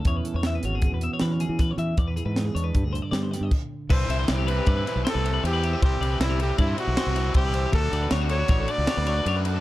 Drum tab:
CC |----------|--------x-|x---------|----------|
RD |----------|----------|-xxxxxxxxx|xxxxxxxxxx|
HH |xxxxxxxxxx|xxxxxxxx--|----------|----------|
SD |--o---o-o-|--o---oo--|-oo-ooo---|--o---oo--|
BD |o---o---o-|o---o---o-|o---o-----|o---o---o-|

CC |----------|
RD |xxxxxxxxxx|
HH |----------|
SD |--ooo-o---|
BD |o---o-----|